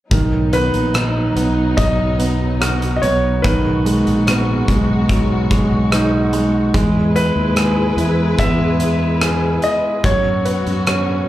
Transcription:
0.10 B1 D#3 F#3 B3 D#4, kick, closed hi-hat
0.53 B3 B4, closed hi-hat
0.74 A#1, closed hi-hat
0.94 D#4, cross-stick, closed hi-hat
1.36 B1 B3, closed hi-hat
1.77 B1 F#3 D#5, kick, closed hi-hat
2.19 B3, closed hi-hat
2.61 F#4, cross-stick, closed hi-hat
2.82 closed hi-hat
2.96 D#5
3.02 B1 B3 C#5, closed hi-hat
3.42 B1 D#3 G#3 B3 F#4 B4, kick, closed hi-hat
3.86 G#3, closed hi-hat
4.07 A#1, closed hi-hat
4.27 B3, cross-stick, closed hi-hat
4.68 B1 G#3, kick, closed hi-hat
5.09 B1 F#3, kick, closed hi-hat
5.51 G#3, kick, closed hi-hat
5.91 D#4, cross-stick, closed hi-hat
6.33 G#3, closed hi-hat
6.74 E2 G#3 E4 G#4 B4, kick, closed hi-hat
7.16 E4 B4, closed hi-hat
7.36 D#2
7.56 G#4, cross-stick, closed hi-hat
7.97 E2 E4, closed hi-hat
8.39 E2 B3 E5, kick, closed hi-hat
8.80 E4, closed hi-hat
9.21 G#4, cross-stick, closed hi-hat
9.62 E4 D#5, closed hi-hat
10.04 F#2 F#3 B3 C#4 F#4 C#5, kick, closed hi-hat
10.45 B4, closed hi-hat
10.67 F#2, closed hi-hat
10.87 C#4, cross-stick, closed hi-hat

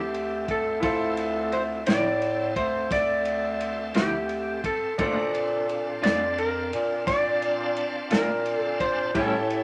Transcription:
Already playing: D2 C4 G4 A4 C5
0.14 ride
0.48 A4, kick, ride
0.80 D2 C4 E4 F4 A4 C5, kick, ride
1.17 ride
1.52 C5, ride
1.86 A2 D3 F3 C4 E4 D5, snare, ride
2.22 ride
2.56 D2 C5, kick, ride
2.91 D2 D5, kick, snare, ride
3.25 ride
3.61 ride
3.94 D2 D3 F3 C4 E4 G4, snare, ride
4.29 ride
4.64 A4, kick, ride
4.98 A#2 D#3 A3 A#3 D4 F4 F#4 A4 C5 A5, kick, ride
5.33 C4 D4 F4 A5, ride
5.69 ride
6.02 F2 A#2 A3 D4 F4 D5, snare, ride
6.38 A#4, ride
6.73 A#2, ride
7.07 A#2 D5, kick, snare, ride
7.42 ride
7.77 ride
8.11 A#2 A3 D4 F4 A#4, snare, ride
8.46 ride
8.57 A4
8.80 C5, kick, ride
9.14 A2 G3 C#4 E4 G4 A4, kick, ride
9.50 ride

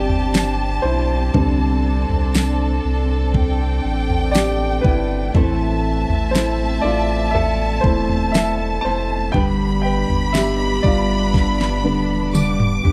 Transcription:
Already playing: G1 D3 G3 C4 D4 G4 D5 E5 A5
0.09 floor tom
0.34 snare, tambourine
0.82 B1 E4 C5
1.34 C2 D3 G3 C4 A4, kick, floor tom
2.09 C2, floor tom
2.34 snare, tambourine
2.85 C2
3.34 G5, kick, floor tom
3.85 A1
4.10 floor tom
4.31 G4 D5, tambourine
4.36 snare
4.81 G1 E4 B4, kick
5.33 A1 A2 E3 A3 C4 E4 A4 E5 A5, kick, floor tom
6.09 A1, floor tom
6.31 A3 C4 E4 C5
6.35 E4 A4, snare, tambourine
6.81 A1 E4 F4 A4 D5
6.86 A3 C4
7.31 A4 E5, floor tom
7.81 E1 E3 A3 C4 E4 C5, kick
8.09 floor tom
8.32 A3 C4 E4 A4 E5, snare, tambourine
8.37 A4
8.81 F1 A4 C5 A5
8.86 A3 C4 E4
9.32 G1 G2 D3 G3 B3 D4 B4 G5 B5, kick, floor tom
9.36 G4
9.82 B4 G5
10.09 G1, floor tom
10.33 G3 B3 D4 G4 E5, snare, tambourine
10.37 G4
10.83 G1 B3 D4 F4 G4 D5, kick
10.87 G3
11.34 kick, snare
11.61 snare
11.84 E1 D3 G3 B3
12.33 G3 B3 D4 G4 D6, mid tom, tambourine
12.60 mid tom
12.84 B1 G3 B3 D4 G4, floor tom

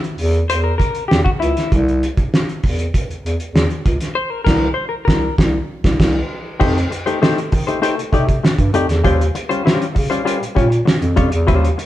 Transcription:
0.04 closed hi-hat
0.18 E2, open hi-hat
0.34 closed hi-hat
0.50 E2 C5, closed hi-hat
0.64 A#4
0.78 A#4, kick, closed hi-hat
0.95 closed hi-hat
1.08 E2 G4, snare
1.24 F#4, kick
1.40 C#2 E4, closed hi-hat
1.57 snare, closed hi-hat
1.72 C2, kick, closed hi-hat
1.88 closed hi-hat
2.03 closed hi-hat
2.17 kick, closed hi-hat
2.34 snare
2.49 closed hi-hat
2.63 E2, kick, open hi-hat
2.79 closed hi-hat
2.94 kick, closed hi-hat
3.09 E2, closed hi-hat
3.24 E2, closed hi-hat
3.40 closed hi-hat
3.54 E2, snare
3.70 closed hi-hat
3.86 C#2, kick, closed hi-hat
4.01 snare, closed hi-hat
4.15 C5
4.30 A#4
4.45 C2 A#4, kick, snare, crash
4.74 C5
4.89 A#4
5.05 C2 A#4, kick, snare
5.38 C2, kick, snare
5.84 C2, kick, snare
6.00 C2, kick, snare, crash
6.60 F2 A3 D#4 G4 C5, kick, crash
6.78 closed hi-hat
6.90 muted clean electric guitar stroke, closed hi-hat
7.06 D#3 A3 D#4 G4 C5, closed hi-hat
7.22 A3 D#4 G4 C5, snare
7.38 D#3, closed hi-hat
7.52 D#3, muted clean electric guitar stroke, kick, open hi-hat
7.67 A3 D#4 G4 C5, closed hi-hat
7.82 A3 D#4 G4 C5, closed hi-hat
7.97 C3, muted clean electric guitar stroke, closed hi-hat
8.12 C3 A3 D#4 G4 D5, kick, closed hi-hat
8.28 muted clean electric guitar stroke, kick, closed hi-hat
8.44 muted clean electric guitar stroke, snare
8.59 G2, kick, closed hi-hat
8.74 F2 A3 D#4 G4 D5, closed hi-hat
8.89 E2, muted clean electric guitar stroke, snare, closed hi-hat
9.04 D#2 G3 C#4 F4 C5, kick, closed hi-hat
9.21 closed hi-hat
9.35 muted clean electric guitar stroke, closed hi-hat
9.49 C#3 G3 C#4 F4 C5, closed hi-hat
9.65 G3 C#4 F4 C5, snare
9.80 C#3, closed hi-hat
9.95 C#3, muted clean electric guitar stroke, kick, open hi-hat
10.10 G3 C#4 F4 C5, closed hi-hat
10.25 G3 C#4 F4 C5, closed hi-hat
10.40 A#2, muted clean electric guitar stroke, closed hi-hat
10.55 A#2 G3 C#4 F4 C#5, kick, closed hi-hat
10.70 muted clean electric guitar stroke, closed hi-hat
10.85 muted clean electric guitar stroke, snare
11.02 F2, closed hi-hat
11.16 F2 G3 C#4 F4 C#5, kick, closed hi-hat
11.31 E2, muted clean electric guitar stroke, closed hi-hat
11.47 D#2 G3 C#4 F4 C5, kick, closed hi-hat
11.65 closed hi-hat
11.78 muted clean electric guitar stroke, closed hi-hat

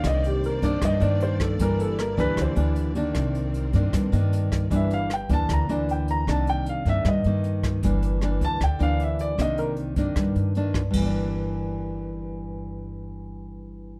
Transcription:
Already playing: D#3 A#3 D4 D5
0.04 C2 C3 A#3 C5 D#5, kick, cross-stick, closed hi-hat
0.24 G4, closed hi-hat
0.44 A#4, closed hi-hat
0.62 G2 D#3 A#3 D4 D5, kick, closed hi-hat
0.82 G2 D#5, kick, cross-stick, closed hi-hat
1.00 G2 D#3 A#3 D4 D5, closed hi-hat
1.20 C5, closed hi-hat
1.40 A4, kick, cross-stick, closed hi-hat
1.59 G1 G2 E3 A#3 D4 E4 G4 A#4, kick, closed hi-hat
1.80 A4, closed hi-hat
1.99 A#4, cross-stick, closed hi-hat
2.17 D2 E3 A#3 D4 B4, kick, closed hi-hat
2.37 D2 D3, kick, cross-stick, closed hi-hat
2.42 C5
2.56 D2 E3 A#3 D4, closed hi-hat
2.76 closed hi-hat
2.95 D#3 A#3 D4, closed hi-hat
3.15 C2 C3 C4 A#4, kick, cross-stick, closed hi-hat
3.35 closed hi-hat
3.54 closed hi-hat
3.73 G2 D#3 A#3 D4, kick, closed hi-hat
3.93 G2, kick, cross-stick, closed hi-hat
4.12 G2 D#3 A#3 D4, closed hi-hat
4.33 closed hi-hat
4.52 kick, cross-stick, closed hi-hat
4.70 G1 G2 E3 A#3 D4, kick, closed hi-hat
4.75 E5
4.91 F5, closed hi-hat
5.10 G5, cross-stick, closed hi-hat
5.29 D2 E3 A#3 D4 A5, kick, closed hi-hat
5.49 D2 D3, kick, cross-stick, closed hi-hat
5.53 A#5
5.69 D2 E3 A#3 D4 D5, closed hi-hat
5.89 G5, closed hi-hat
6.08 A#5, closed hi-hat
6.27 C2 C3 D#3 A#3 D4 A5, kick, cross-stick, closed hi-hat
6.47 G5, closed hi-hat
6.66 F5, closed hi-hat
6.85 G2 D#3 A#3 D4 E5, kick, closed hi-hat
7.05 G2 D#5, kick, cross-stick, closed hi-hat
7.24 G2 D#3 A#3, closed hi-hat
7.44 closed hi-hat
7.63 kick, cross-stick, closed hi-hat
7.83 G1 G2 E3 A#3 D4, kick, closed hi-hat
8.02 closed hi-hat
8.21 E3 A#3 D4, cross-stick, closed hi-hat
8.41 D2 A5, kick, closed hi-hat
8.60 D2 D3 G5, kick, cross-stick, closed hi-hat
8.79 D2 E3 A#3 D4 F5, closed hi-hat
9.00 E5, closed hi-hat
9.19 D5, closed hi-hat
9.38 C2 C3 D#3 A#3 D4 D#5, kick, cross-stick, closed hi-hat
9.58 A#4, closed hi-hat
9.77 closed hi-hat
9.96 G2 D#3 A#3 D4, kick, closed hi-hat
10.16 G2, kick, cross-stick, closed hi-hat
10.35 G2, closed hi-hat
10.55 D#3 A#3 D4, closed hi-hat
10.74 kick, cross-stick, closed hi-hat
10.91 G1 G2, kick, crash
10.97 E3
11.02 A#3
11.06 D4

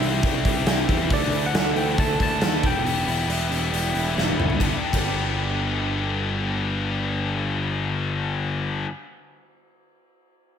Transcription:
Already playing: C3 G3 G4 E5
0.00 C2 E3 G3 C4 E4, open hi-hat
0.23 C2 G3, kick, open hi-hat
0.45 C2 G4, kick, open hi-hat
0.66 C2 C3 G3 C4 E4, snare, open hi-hat
0.70 E4
0.88 E2 E3 G3 C4 E4, kick, open hi-hat
1.10 D2 D3 E3 A3 E4 D5, kick, open hi-hat
1.22 snare
1.32 D2 E4, open hi-hat
1.46 F#5
1.53 D2 D3 E3 A3 E4, snare, open hi-hat
1.74 D2 D3 E3 A3 E4 G5, open hi-hat
1.97 D2 A3 A5, kick, open hi-hat
2.19 D2 E4 A5, kick, open hi-hat
2.40 D#2 D3 E3 A3 D4 E4, snare, open hi-hat
2.62 E1 E2 E3 G3 B3 E4, kick, open hi-hat
2.66 G5
2.84 E1 E2 E3 G3 B3 E4, open hi-hat
3.07 E1 E4, open hi-hat
3.28 E1 E3 G3 B3, open hi-hat
3.32 E4
3.50 E1 E3 G3 B3 E4, open hi-hat
3.72 E1 G3, open hi-hat
3.94 E1 E4, open hi-hat
4.15 E1 E3 G3 B3 E4, snare
4.28 high tom
4.36 G1 E3 G3 B3 E4, mid tom
4.50 floor tom
4.57 G1 G2 D3 G3 B3, kick, ride
4.62 B3 D4 G4
4.91 G1 G2 D3 G3 B3 D4, kick, ride
4.96 D4 G4

